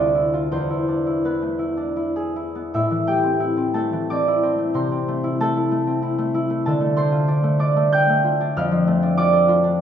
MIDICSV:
0, 0, Header, 1, 2, 480
1, 0, Start_track
1, 0, Key_signature, 0, "minor"
1, 0, Tempo, 723764
1, 340, Time_signature, 3, 2, 24, 8
1, 1300, Tempo, 775194
1, 1780, Tempo, 682594
1, 2740, Tempo, 645161
1, 3700, Tempo, 623701
1, 5140, Tempo, 650054
1, 6100, Tempo, 620476
1, 7065, End_track
2, 0, Start_track
2, 0, Title_t, "Harp"
2, 0, Program_c, 0, 46
2, 0, Note_on_c, 0, 38, 50
2, 0, Note_on_c, 0, 65, 44
2, 0, Note_on_c, 0, 74, 65
2, 0, Note_on_c, 0, 81, 83
2, 99, Note_on_c, 0, 64, 36
2, 214, Note_off_c, 0, 65, 0
2, 222, Note_on_c, 0, 65, 40
2, 304, Note_off_c, 0, 64, 0
2, 342, Note_on_c, 0, 40, 47
2, 345, Note_on_c, 0, 72, 64
2, 358, Note_off_c, 0, 38, 0
2, 359, Note_off_c, 0, 74, 0
2, 362, Note_off_c, 0, 65, 0
2, 365, Note_off_c, 0, 81, 0
2, 466, Note_on_c, 0, 64, 38
2, 583, Note_on_c, 0, 62, 32
2, 699, Note_off_c, 0, 64, 0
2, 707, Note_on_c, 0, 64, 37
2, 788, Note_off_c, 0, 62, 0
2, 828, Note_on_c, 0, 59, 40
2, 831, Note_on_c, 0, 71, 49
2, 942, Note_on_c, 0, 57, 37
2, 1046, Note_off_c, 0, 64, 0
2, 1054, Note_on_c, 0, 64, 42
2, 1142, Note_off_c, 0, 57, 0
2, 1156, Note_off_c, 0, 72, 0
2, 1174, Note_on_c, 0, 62, 36
2, 1293, Note_off_c, 0, 64, 0
2, 1301, Note_on_c, 0, 64, 39
2, 1381, Note_off_c, 0, 62, 0
2, 1423, Note_on_c, 0, 68, 41
2, 1541, Note_off_c, 0, 64, 0
2, 1548, Note_on_c, 0, 64, 40
2, 1659, Note_off_c, 0, 59, 0
2, 1666, Note_on_c, 0, 59, 34
2, 1783, Note_on_c, 0, 45, 54
2, 1784, Note_off_c, 0, 64, 0
2, 1787, Note_on_c, 0, 76, 63
2, 1793, Note_on_c, 0, 64, 45
2, 1799, Note_off_c, 0, 59, 0
2, 1801, Note_off_c, 0, 40, 0
2, 1802, Note_off_c, 0, 68, 0
2, 1802, Note_off_c, 0, 71, 0
2, 1902, Note_on_c, 0, 52, 39
2, 2015, Note_on_c, 0, 57, 40
2, 2018, Note_on_c, 0, 79, 63
2, 2024, Note_on_c, 0, 67, 48
2, 2131, Note_on_c, 0, 60, 42
2, 2238, Note_off_c, 0, 64, 0
2, 2247, Note_on_c, 0, 64, 47
2, 2357, Note_off_c, 0, 60, 0
2, 2366, Note_on_c, 0, 60, 43
2, 2480, Note_off_c, 0, 57, 0
2, 2486, Note_on_c, 0, 81, 53
2, 2489, Note_on_c, 0, 57, 45
2, 2499, Note_on_c, 0, 69, 47
2, 2609, Note_off_c, 0, 52, 0
2, 2617, Note_on_c, 0, 52, 41
2, 2737, Note_off_c, 0, 60, 0
2, 2740, Note_on_c, 0, 86, 75
2, 2745, Note_on_c, 0, 60, 50
2, 2750, Note_on_c, 0, 74, 58
2, 2840, Note_off_c, 0, 79, 0
2, 2862, Note_off_c, 0, 64, 0
2, 2871, Note_on_c, 0, 64, 47
2, 2977, Note_off_c, 0, 60, 0
2, 2986, Note_on_c, 0, 60, 44
2, 3090, Note_off_c, 0, 57, 0
2, 3099, Note_on_c, 0, 57, 40
2, 3217, Note_on_c, 0, 48, 51
2, 3221, Note_on_c, 0, 84, 58
2, 3229, Note_on_c, 0, 72, 45
2, 3238, Note_off_c, 0, 52, 0
2, 3242, Note_off_c, 0, 45, 0
2, 3243, Note_off_c, 0, 67, 0
2, 3245, Note_off_c, 0, 74, 0
2, 3338, Note_off_c, 0, 60, 0
2, 3347, Note_on_c, 0, 60, 43
2, 3461, Note_off_c, 0, 57, 0
2, 3470, Note_on_c, 0, 57, 43
2, 3556, Note_off_c, 0, 86, 0
2, 3576, Note_off_c, 0, 64, 0
2, 3585, Note_on_c, 0, 64, 47
2, 3700, Note_off_c, 0, 81, 0
2, 3702, Note_off_c, 0, 57, 0
2, 3709, Note_on_c, 0, 57, 52
2, 3710, Note_off_c, 0, 69, 0
2, 3712, Note_on_c, 0, 81, 77
2, 3720, Note_on_c, 0, 69, 62
2, 3826, Note_off_c, 0, 64, 0
2, 3836, Note_on_c, 0, 64, 45
2, 3940, Note_off_c, 0, 57, 0
2, 3949, Note_on_c, 0, 57, 46
2, 4059, Note_off_c, 0, 60, 0
2, 4068, Note_on_c, 0, 60, 42
2, 4178, Note_off_c, 0, 64, 0
2, 4187, Note_on_c, 0, 64, 50
2, 4301, Note_off_c, 0, 57, 0
2, 4310, Note_on_c, 0, 57, 52
2, 4424, Note_off_c, 0, 64, 0
2, 4433, Note_on_c, 0, 64, 51
2, 4544, Note_off_c, 0, 57, 0
2, 4553, Note_on_c, 0, 57, 46
2, 4665, Note_off_c, 0, 76, 0
2, 4665, Note_off_c, 0, 81, 0
2, 4674, Note_on_c, 0, 81, 68
2, 4675, Note_off_c, 0, 69, 0
2, 4679, Note_on_c, 0, 50, 55
2, 4684, Note_off_c, 0, 48, 0
2, 4684, Note_off_c, 0, 84, 0
2, 4685, Note_on_c, 0, 69, 55
2, 4687, Note_off_c, 0, 60, 0
2, 4689, Note_off_c, 0, 64, 0
2, 4690, Note_off_c, 0, 72, 0
2, 4778, Note_off_c, 0, 57, 0
2, 4788, Note_on_c, 0, 57, 44
2, 4912, Note_on_c, 0, 62, 52
2, 4913, Note_on_c, 0, 84, 76
2, 4921, Note_on_c, 0, 72, 59
2, 5030, Note_on_c, 0, 65, 48
2, 5145, Note_off_c, 0, 62, 0
2, 5154, Note_on_c, 0, 62, 54
2, 5257, Note_off_c, 0, 57, 0
2, 5266, Note_on_c, 0, 57, 49
2, 5377, Note_off_c, 0, 62, 0
2, 5384, Note_on_c, 0, 62, 51
2, 5388, Note_on_c, 0, 86, 72
2, 5391, Note_on_c, 0, 74, 53
2, 5502, Note_off_c, 0, 57, 0
2, 5511, Note_on_c, 0, 57, 52
2, 5625, Note_off_c, 0, 62, 0
2, 5629, Note_on_c, 0, 91, 102
2, 5634, Note_on_c, 0, 62, 48
2, 5640, Note_on_c, 0, 79, 70
2, 5729, Note_off_c, 0, 84, 0
2, 5745, Note_off_c, 0, 57, 0
2, 5754, Note_on_c, 0, 57, 54
2, 5854, Note_off_c, 0, 65, 0
2, 5863, Note_on_c, 0, 65, 49
2, 5976, Note_off_c, 0, 62, 0
2, 5985, Note_on_c, 0, 62, 53
2, 6103, Note_on_c, 0, 41, 58
2, 6106, Note_on_c, 0, 89, 76
2, 6117, Note_on_c, 0, 77, 58
2, 6126, Note_off_c, 0, 50, 0
2, 6126, Note_off_c, 0, 79, 0
2, 6129, Note_off_c, 0, 72, 0
2, 6218, Note_on_c, 0, 53, 50
2, 6331, Note_off_c, 0, 57, 0
2, 6341, Note_on_c, 0, 57, 54
2, 6437, Note_off_c, 0, 91, 0
2, 6450, Note_off_c, 0, 62, 0
2, 6459, Note_on_c, 0, 62, 56
2, 6563, Note_off_c, 0, 86, 0
2, 6565, Note_off_c, 0, 65, 0
2, 6573, Note_on_c, 0, 65, 62
2, 6574, Note_off_c, 0, 74, 0
2, 6574, Note_on_c, 0, 86, 96
2, 6583, Note_on_c, 0, 74, 72
2, 6679, Note_off_c, 0, 69, 0
2, 6689, Note_on_c, 0, 69, 55
2, 6804, Note_off_c, 0, 65, 0
2, 6813, Note_on_c, 0, 65, 60
2, 6923, Note_off_c, 0, 62, 0
2, 6932, Note_on_c, 0, 62, 60
2, 7056, Note_off_c, 0, 69, 0
2, 7065, Note_off_c, 0, 41, 0
2, 7065, Note_off_c, 0, 53, 0
2, 7065, Note_off_c, 0, 57, 0
2, 7065, Note_off_c, 0, 62, 0
2, 7065, Note_off_c, 0, 65, 0
2, 7065, Note_off_c, 0, 74, 0
2, 7065, Note_off_c, 0, 77, 0
2, 7065, Note_off_c, 0, 81, 0
2, 7065, Note_off_c, 0, 86, 0
2, 7065, Note_off_c, 0, 89, 0
2, 7065, End_track
0, 0, End_of_file